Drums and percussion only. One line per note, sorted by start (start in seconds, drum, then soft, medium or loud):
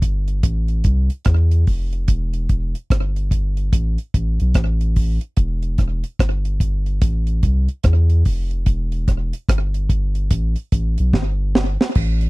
0.02 kick medium
0.02 closed hi-hat medium
0.28 closed hi-hat soft
0.43 kick loud
0.43 closed hi-hat loud
0.68 closed hi-hat soft
0.84 kick medium
0.84 closed hi-hat medium
1.10 closed hi-hat soft
1.25 kick loud
1.25 cross-stick loud
1.25 closed hi-hat medium
1.51 closed hi-hat medium
1.67 kick medium
1.67 open hi-hat medium
1.93 closed hi-hat soft
2.08 kick medium
2.08 closed hi-hat medium
2.33 closed hi-hat soft
2.49 kick medium
2.49 closed hi-hat medium
2.75 closed hi-hat medium
2.90 kick loud
2.90 cross-stick loud
2.90 closed hi-hat medium
3.16 closed hi-hat soft
3.31 kick medium
3.31 closed hi-hat medium
3.57 closed hi-hat soft
3.73 kick loud
3.73 closed hi-hat loud
3.98 closed hi-hat soft
4.14 kick medium
4.14 closed hi-hat medium
4.40 closed hi-hat soft
4.54 kick loud
4.54 cross-stick loud
4.54 closed hi-hat medium
4.81 closed hi-hat medium
4.96 kick medium
4.96 open hi-hat medium
5.21 closed hi-hat soft
5.37 kick medium
5.37 closed hi-hat medium
5.63 closed hi-hat soft
5.78 kick medium
5.78 cross-stick medium
5.78 closed hi-hat medium
6.04 closed hi-hat medium
6.19 kick loud
6.19 cross-stick loud
6.19 closed hi-hat medium
6.45 closed hi-hat soft
6.60 kick medium
6.60 closed hi-hat medium
6.86 closed hi-hat soft
7.02 kick loud
7.02 closed hi-hat medium
7.27 closed hi-hat soft
7.43 kick medium
7.43 closed hi-hat medium
7.68 closed hi-hat soft
7.84 kick loud
7.84 cross-stick loud
7.84 closed hi-hat medium
8.10 closed hi-hat medium
8.25 kick medium
8.25 open hi-hat medium
8.51 closed hi-hat soft
8.66 kick loud
8.66 closed hi-hat medium
8.92 closed hi-hat soft
9.08 kick medium
9.08 cross-stick medium
9.08 closed hi-hat medium
9.33 closed hi-hat medium
9.49 kick loud
9.49 cross-stick loud
9.49 closed hi-hat medium
9.74 closed hi-hat medium
9.89 kick medium
9.89 closed hi-hat medium
10.15 closed hi-hat soft
10.31 kick loud
10.31 closed hi-hat loud
10.56 closed hi-hat soft
10.72 kick loud
10.72 closed hi-hat medium
10.98 closed hi-hat medium
11.13 kick loud
11.13 snare medium
11.55 snare medium
11.81 snare medium
11.95 kick loud
11.95 crash loud
12.21 closed hi-hat soft